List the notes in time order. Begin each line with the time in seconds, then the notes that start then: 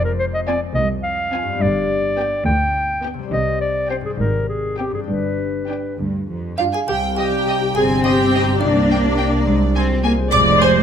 Already playing: F1 F2 G#3 C4 F4
0.05 A#4
0.19 C5
0.34 D#5
0.47 C4 F4 D5 G#5
0.75 C2 D#5
1.03 F5
1.32 C4 F4 G#5
1.43 G2
1.47 G3
1.52 B3
1.56 G4
1.61 G1 G2 D5
2.18 B3 G4 G5
2.46 D2 G5
3.03 B3 G4 G5
3.14 C3
3.19 G3
3.23 C4
3.28 G4
3.32 C2 C3 D#5
3.61 D5
3.89 C4 G4 C5 G5
4.01 G#2
4.05 G3 G#4
4.10 C4
4.15 G4
4.19 G#1 G#2 A#4
4.49 G#4
4.78 C4 G4 G5
4.90 G2
4.94 G3 G#4
4.99 D4
5.04 G4
5.08 G1 G2 B4
5.69 D4 G4 G5
5.98 D2 G2
6.28 F2
6.57 G2 D4 F4 G4 F5 G5
6.73 G#4 G#5
6.87 C2 C3 G4 G5
7.03 C4
7.16 G3 G4 D#5 G5
7.32 D#4
7.46 G4 D#5
7.61 D#4
7.75 G1 C4 G#4 D#5 G#5
7.90 G5
8.04 G4 D#5 G5
8.18 G4
8.33 D#4 D#5
8.47 G3
8.61 C2 C3 A#3 D4 D5
8.76 G3
8.90 G5
9.04 D4
9.17 G4 G5
9.32 A#4
9.47 C2 C3 G#3
9.62 G#3
9.75 C4 G#5
9.90 F4
10.03 A#3 G#4 G#5
10.18 C5
10.32 F1 F2 G#3 D5 D6
10.47 C3
10.61 C4 C5 G#5 C6
10.75 F4